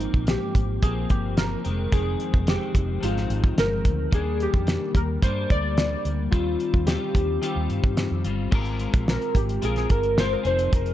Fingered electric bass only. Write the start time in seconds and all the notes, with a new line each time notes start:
0.14 A#1
0.55 G#1
0.83 A#1
1.10 G1
1.66 F1
1.92 F1
2.34 F1
2.74 F1
3.03 G#1
3.30 G#1
3.57 G1
3.85 D2
4.13 D#2
4.54 F2
4.95 D#2
5.23 G2
5.51 D2
6.05 D2
6.33 D#2
6.74 D#2
7.15 D#2
7.56 D#2
7.70 G2
7.83 G2
8.11 F2
8.25 G1
8.52 G#1
8.94 A#1
9.35 G#1
9.63 A#1
9.90 G1
10.45 F1
10.73 F1